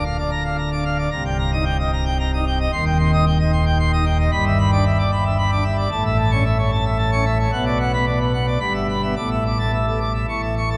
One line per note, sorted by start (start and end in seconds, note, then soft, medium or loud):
0.00 1.08 D1 medium
0.00 1.08 D2 medium
0.05 0.17 F5 medium
0.18 0.30 D5 medium
0.31 0.43 A#5 medium
0.44 0.56 F5 medium
0.58 0.70 A#5 medium
0.72 0.84 D4 medium
0.72 0.84 D6 medium
0.85 0.97 F5 medium
0.98 1.10 D5 medium
1.11 2.68 C1 loud
1.11 2.68 C2 loud
1.11 1.23 A#5 medium
1.25 1.37 G5 medium
1.39 1.51 A#5 medium
1.53 1.64 D#4 medium
1.53 1.64 D#6 loud
1.65 1.77 G5 medium
1.79 1.91 D#5 medium
1.93 2.04 A#5 loud
2.06 2.18 G5 medium
2.20 2.31 A#5 medium
2.33 2.45 D#4 medium
2.33 2.45 D#6 medium
2.47 2.58 G5 medium
2.60 2.71 D#5 medium
2.72 4.29 D#1 loud
2.72 4.29 D#2 loud
2.72 2.84 C6 loud
2.86 2.98 G5 loud
2.99 3.11 C6 loud
3.13 3.25 D#4 medium
3.13 3.25 D#6 loud
3.26 3.38 G5 medium
3.39 3.51 D#5 medium
3.53 3.65 C6 medium
3.66 3.78 G5 medium
3.79 3.91 C6 loud
3.93 4.05 D#4 medium
3.93 4.05 D#6 loud
4.05 4.18 G5 medium
4.19 4.31 D#5 medium
4.31 5.88 G1 loud
4.31 5.88 G2 loud
4.31 4.44 B5 loud
4.46 4.58 E5 medium
4.58 4.71 B5 medium
4.72 4.84 D4 medium
4.72 4.84 D6 loud
4.86 4.98 E5 medium
4.99 5.11 D5 medium
5.12 5.24 B5 loud
5.25 5.37 E5 medium
5.38 5.51 B5 medium
5.52 5.64 D4 medium
5.52 5.64 D6 medium
5.65 5.77 E5 medium
5.78 5.90 D5 medium
5.91 7.49 A1 loud
5.91 7.48 A2 loud
5.91 6.04 A5 medium
6.05 6.17 E5 medium
6.18 6.30 A5 medium
6.31 6.44 C#4 medium
6.31 6.44 C#6 loud
6.45 6.57 E5 medium
6.58 6.71 C#5 medium
6.72 6.84 A5 medium
6.85 6.97 E5 medium
6.98 7.11 A5 medium
7.12 7.24 C#4 medium
7.12 7.25 C#6 medium
7.26 7.38 E5 medium
7.39 7.51 C#5 medium
7.52 8.58 B1 medium
7.52 8.58 B2 loud
7.52 7.65 F#5 medium
7.66 7.78 D5 medium
7.80 7.92 F#5 medium
7.93 8.05 B3 medium
7.93 8.05 B5 loud
8.07 8.19 D5 medium
8.20 8.32 B4 medium
8.34 8.46 F#5 medium
8.47 8.59 D5 medium
8.60 9.15 G1 medium
8.60 9.15 G2 medium
8.60 8.73 B5 medium
8.74 8.87 E5 medium
8.89 9.01 B5 medium
9.03 9.15 B3 medium
9.03 9.15 E5 medium
9.16 10.25 A1 medium
9.16 10.25 A2 medium
9.16 9.29 D6 medium
9.31 9.44 E5 medium
9.46 9.58 D6 medium
9.59 9.71 A3 medium
9.59 9.71 A5 medium
9.73 9.86 E5 medium
9.86 9.99 A4 medium
10.00 10.13 D6 medium
10.14 10.26 E5 medium
10.29 10.77 A1 medium
10.29 10.77 A2 medium
10.29 10.41 C#6 medium
10.42 10.54 E5 medium
10.57 10.69 C#6 medium
10.70 10.77 A3 medium
10.70 10.77 A5 medium